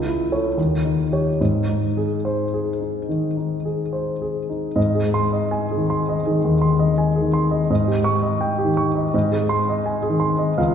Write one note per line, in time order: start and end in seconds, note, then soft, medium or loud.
0.00 0.55 C#2 soft
0.06 0.47 E4 soft
0.32 0.55 A4 soft
0.32 0.55 C#5 soft
0.57 1.37 D#2 soft
0.85 1.28 D#4 soft
1.12 1.37 G4 soft
1.12 1.37 C#5 soft
1.41 3.06 G#2 soft
1.69 2.14 D#4 soft
1.97 2.42 G#4 soft
2.25 2.69 C5 soft
2.54 2.98 G#4 soft
2.81 3.26 D#4 soft
3.09 3.54 D#3 soft
3.37 3.82 D#4 soft
3.65 4.10 G#4 soft
3.93 4.38 C5 soft
4.22 4.66 G#4 soft
4.49 4.76 D#4 soft
4.76 6.21 G#2 soft
4.76 5.07 D#5 soft
4.95 5.25 G#4 soft
5.14 5.44 C6 soft
5.33 5.63 D#5 soft
5.51 5.81 G#5 soft
5.71 6.00 G#4 soft
5.77 6.16 D#3 soft
5.90 6.19 C6 soft
6.09 6.37 D#5 soft
6.26 6.64 D#3 soft
6.26 6.54 G#4 soft
6.44 6.73 D#2 soft
6.61 6.90 C6 soft
6.79 7.08 D#5 soft
6.98 7.27 G#5 soft
7.16 7.45 G#4 soft
7.22 7.60 D#3 soft
7.33 7.62 C6 soft
7.51 7.69 D#5 soft
7.70 9.09 G#2 soft
7.70 7.99 D#5 soft
7.88 8.16 G4 soft
8.04 8.33 C#6 medium
8.23 8.51 D#5 soft
8.41 8.69 G5 soft
8.59 8.87 G4 soft
8.65 9.03 D#3 soft
8.77 9.06 C#6 soft
8.96 9.13 D#5 soft
9.14 10.54 G#2 soft
9.14 9.43 D#5 soft
9.32 9.60 G#4 soft
9.49 9.78 C6 medium
9.69 9.97 D#5 soft
9.86 10.14 G#5 soft
10.03 10.32 G#4 soft
10.09 10.48 D#3 soft
10.20 10.50 C6 soft
10.39 10.57 D#5 soft
10.58 10.75 C#2 soft
10.58 10.75 F5 soft